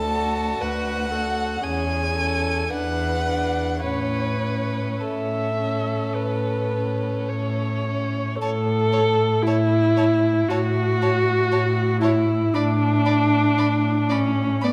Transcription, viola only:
Already playing: A4
0.60 B4
1.11 A4
1.63 G#4
2.15 A4
2.70 B4
3.83 C#5
5.01 E5
6.15 B4
7.29 C#5
8.39 A4
9.43 E4
10.48 F#4
12.02 E4
12.54 D4
14.11 C#4
14.63 B3

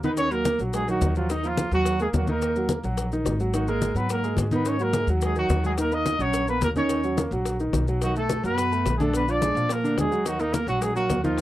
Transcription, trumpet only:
0.04 B4
0.18 C#5
0.31 A#4
0.75 G#4
0.90 F#4
1.17 F4
1.31 D#4
1.47 F4
1.74 F#4
2.02 G#4
2.16 F#4
2.31 A#4
3.54 F#4
3.68 A#4
3.97 B4
4.12 A#4
4.55 B4
4.68 C#5
4.82 A#4
5.24 G#4
5.39 F#4
5.66 G#4
5.81 A#4
5.94 D#5
6.21 C#5
6.49 B4
6.64 A#4
6.78 C#5
8.03 F#4
8.17 A4
8.46 B4
8.97 G#4
9.02 A4
9.16 B4
9.30 D5
9.72 A#4
9.99 G#4
10.27 F#4
10.40 D#4
10.54 A#4
10.69 F#4
10.82 G#4
10.96 F#4
11.24 F4

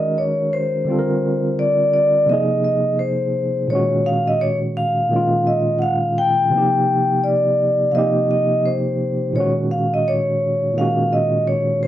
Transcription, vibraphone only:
Already playing: D#5
0.18 C#5
0.53 C5
1.59 D5
1.93 D5
2.29 D#5
2.64 D#5
2.99 C5
3.70 C#5
4.06 F5
4.28 D#5
4.41 C#5
4.77 F5
5.47 D#5
5.79 F5 F#5
6.18 G5
7.24 D5
7.92 D#5 F5
8.31 D#5
8.66 C5
9.36 C#5
9.71 F5
9.94 D#5
10.08 C#5
10.78 F5
11.13 D#5
11.47 C#5
11.83 C5

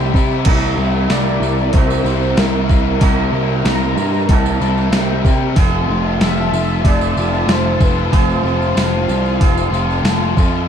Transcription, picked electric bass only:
Already playing: C2
0.15 C3
0.46 C2
0.77 C2
1.10 C2
1.41 C2
1.74 C2
2.04 C2
2.38 C2
2.70 C2
3.01 C2
3.32 C2
3.65 C2
3.97 G2
4.29 C2
4.61 C2
4.92 C2
5.25 C3
5.56 F1
5.88 F1
6.20 F1
6.52 F1
6.84 F1
7.17 F1
7.47 F1
7.80 F1
8.13 F1
8.44 F1
8.77 F1
9.08 C2
9.41 F1
9.71 F1
10.04 F1
10.37 F2

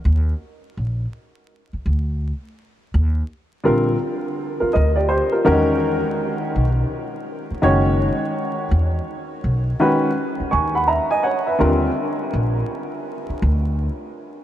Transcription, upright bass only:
0.05 D#2
0.77 A#1
1.73 muted upright bass stroke
1.86 D2
2.94 D#2
3.67 A#1
4.62 muted upright bass stroke
4.75 D2
5.47 E2
6.56 B1
7.51 muted upright bass stroke
7.63 F#1
8.71 E2
9.44 B1
10.40 muted upright bass stroke
10.53 D#2
11.61 D#2
12.34 A#1
13.29 muted upright bass stroke
13.42 D2

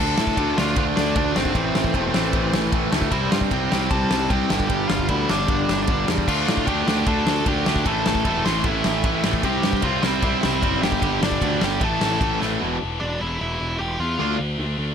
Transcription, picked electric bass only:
0.00 D2
0.20 A2
0.38 D2
0.58 D2
0.77 D2
0.97 D2
1.16 D2
1.36 G#1
1.55 A1
1.75 A1
1.95 E1
2.15 A1
2.33 A1
2.53 A1
2.73 A1
2.93 D2
3.12 C2
3.32 G2
3.52 C2
3.72 C2
3.91 C2
4.11 C2
4.30 C2
4.51 G1
4.70 G1
4.91 G1
5.09 D2
5.30 G1
5.48 G1
5.70 G1
5.88 G1
6.08 E2
6.28 D2
6.49 A2
6.67 D2
6.87 D2
7.07 D2
7.26 D2
7.47 D2
7.68 D2
7.86 A1
8.07 A1
8.25 E1
8.46 A1
8.64 A1
8.86 A1
9.05 A1
9.25 A1
9.44 C2
9.64 G2
9.83 C2
10.03 C2
10.23 C2
10.45 C2
10.63 F#1
10.82 G1
11.03 G1
11.22 G1
11.42 D2
11.62 G1
11.82 A1
12.02 A1
12.21 A1
12.41 A1
12.62 E1
12.83 E1
13.02 E1
13.21 E1
13.41 E1
13.61 E1
13.80 E1
14.00 E2
14.20 D2
14.40 D2
14.59 D2
14.78 D2

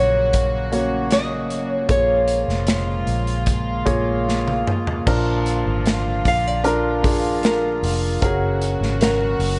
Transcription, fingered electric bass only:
Already playing: A#1
1.50 G#1
1.89 A#1
2.48 F1
3.07 A#1
3.86 A#1
5.07 A#1
5.66 G#1
6.25 A#1
7.83 F1
8.22 F#1
8.81 G#1
9.39 F#1

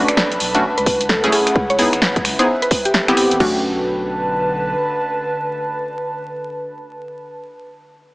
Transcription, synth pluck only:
0.08 D5
0.78 B4
1.09 A4
1.32 G#4
1.70 C#5
2.39 C5
2.62 B4
2.86 G4
3.17 G4
3.40 F#4

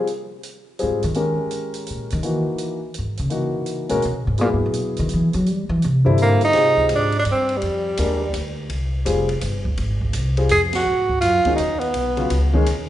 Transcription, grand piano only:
0.79 G3 C4 F4 G#4
1.15 G#3 C#4 G4 A#4
2.23 E3 A#3 D#4 F#4
3.30 E3 A#3 D#4 F#4
3.89 G#3 C#4 F#4 A#4
4.38 F#3 B3 E4 G#4
6.05 D3 G3 C4 E4
6.54 C4 F4 G4 G#4
7.99 G#3 D4 G4 A#4
9.05 G3 C4 F4 G#4
10.37 G3 C4 F4 G#4
11.46 D#3 G#3 C#4 F#4
12.17 C#3 F#3 B3 F4
12.54 D#3 G#3 C#4 G#4

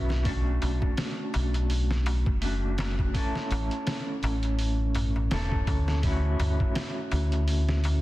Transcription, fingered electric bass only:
Already playing: B1
0.62 B1
1.35 B1
2.27 F#1
3.51 A1
4.23 A1
5.31 E1
5.67 D2
6.39 D2
7.12 D2

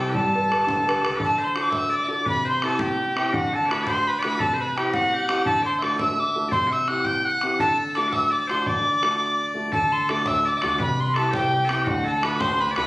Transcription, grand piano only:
Already playing: C4 E4
0.00 G4
0.15 G3
0.34 G4 B4
0.50 G4 A4 B4
0.67 D3
0.86 G4 A4 B4
1.02 G4 A4 B4
1.20 D3
1.55 D4 F#4 A4
2.08 D4 F#4 A4
2.26 C3
2.63 C4 E4 G4
3.16 C4 E4 G4
3.33 D3
3.70 A3 D4 F#4
4.24 A3 D4 F#4
4.41 C3
4.77 C4 E4 G4
5.29 C4 E4 G4
5.45 D3
5.82 A3 D4 F#4
6.35 A3 D4 F#4
6.53 C3
6.89 C4 E4 G4
7.43 C4 E4 G4
7.60 D3
7.96 A3 D4 F#4
8.50 A3 D4 F#4
8.66 D3
9.02 A3 D4 F#4
9.54 A3 D4 F#4
9.73 D3
10.09 A3 D4 F#4
10.63 A3 D4 F#4
10.80 C3
11.16 C4 E4 G4
11.70 C4 E4 G4
11.88 D3
12.23 A3 D4 F#4
12.77 A3 D4 F#4

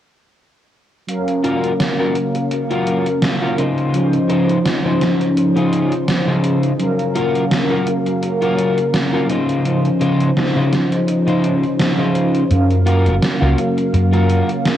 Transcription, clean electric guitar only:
1.44 F4 F#4 A#4
1.99 F4 F#4 A#4
2.35 muted clean electric guitar stroke
2.51 muted clean electric guitar stroke
2.70 F4 F#4 A#4
3.42 F4 F#4 A#4
3.58 C#3 D#4 F4 C5
4.29 C#3 D#4 F4 C5
4.84 C#3 D#4 F4 C5
5.20 muted clean electric guitar stroke
5.37 muted clean electric guitar stroke
5.56 C#3 D#4 F4 G#4
6.27 C#3 D#4 F4 C5
7.15 F4 F#4 A#4
7.70 F4 F#4 A#4
8.06 muted clean electric guitar stroke
8.22 muted clean electric guitar stroke
8.42 F4 F#4 A#4
9.13 F4 F#4 A#4
9.29 C#3 D#4 F4 C5
10.00 C#3 D#4 F4 C5
10.55 C#3 D#4 F4 C5
10.91 muted clean electric guitar stroke
11.07 muted clean electric guitar stroke
11.27 C#3 D#4 F4 C5
11.98 C#3 D#4 F4 C5
12.86 F4 F#4 A#4
13.41 F4 F#4 A#4
13.77 muted clean electric guitar stroke
13.93 muted clean electric guitar stroke
14.12 F4 F#4 A#4

